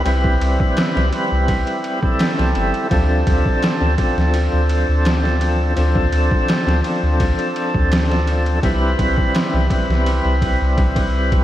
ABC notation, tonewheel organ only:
X:1
M:4/4
L:1/16
Q:1/4=84
K:Ddor
V:1 name="Tonewheel organ"
[G,CEB]6 [G,CEB]4- [G,CEB] [G,CEA]4- [G,CEA] | [F,CDA]6 [F,CDA]8- [F,CDA]2 | [F,CDA]6 [F,CDA]8- [F,CDA]2 | [G,CEB]6 [G,CEB]8- [G,CEB]2 |]